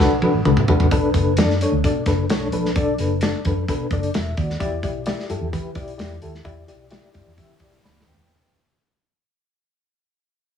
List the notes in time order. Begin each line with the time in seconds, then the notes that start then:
0.00 D4 F#4 A4 B4, kick, snare
0.11 B1
0.22 D4 F#4 A4 B4, high tom
0.34 A1
0.45 C#2 D4 F#4 A4 B4, mid tom
0.57 mid tom
0.68 B1 D4 F#4 A4 B4, floor tom
0.80 A1, floor tom
0.91 B1 D4 A4 B4, kick, closed hi-hat
1.14 F#1 D4 A4 B4, kick, closed hi-hat
1.37 F#2 D4 A4 D5, snare, closed hi-hat
1.50 snare
1.61 D4 A4 C#5, closed hi-hat
1.72 D2
1.84 B2 D4 A4 D5, kick, closed hi-hat
2.06 F#1 D4 A4 B4, kick, snare, closed hi-hat
2.29 B1 D4 A4 C#5, snare, closed hi-hat
2.52 A#1 D4 A4 B4, closed hi-hat
2.65 snare
2.76 B1 D4 A4 D5, kick, closed hi-hat
2.98 F#1 D4 A4 B4, closed hi-hat
3.21 D4 A4 D5, snare, closed hi-hat
3.45 F#2 D4 A4 B4, kick, closed hi-hat
3.68 B2 D4 A4 B4, kick, closed hi-hat
3.91 F#1 D4 A4 D5, kick, closed hi-hat
4.03 closed hi-hat
4.14 E1 E5, snare, closed hi-hat
4.37 D#2 F#4 D5, kick, closed hi-hat
4.50 snare
4.60 E2 E4 G4 D5, kick, closed hi-hat
4.83 B1 E4 G4 D5, kick, closed hi-hat
5.06 E4 G4 D5, snare, closed hi-hat
5.20 snare
5.29 G2 E4 G4 A4, closed hi-hat
5.41 E2
5.53 E3 E4 G4 B4, kick, closed hi-hat
5.75 B1 E4 G4 D5, kick, closed hi-hat
5.88 closed hi-hat
5.98 E2 E4 G4 D5, snare, closed hi-hat
6.22 D#2 E4 G4 A4, closed hi-hat
6.35 snare
6.45 E2 E4 G4 D5, kick, closed hi-hat
6.68 B1 E4 G4 D5, closed hi-hat
6.91 E4 G4 D5, snare, closed hi-hat
7.14 G2 E4 G4 D5, kick, closed hi-hat
7.26 E2
7.38 E3 E4 G4 E5, kick, closed hi-hat
7.60 B1 E4 G4 D5, kick, closed hi-hat
7.72 closed hi-hat
7.84 D2 D5 B5, snare
8.00 snare
8.07 D#2 B4 G5
8.14 floor tom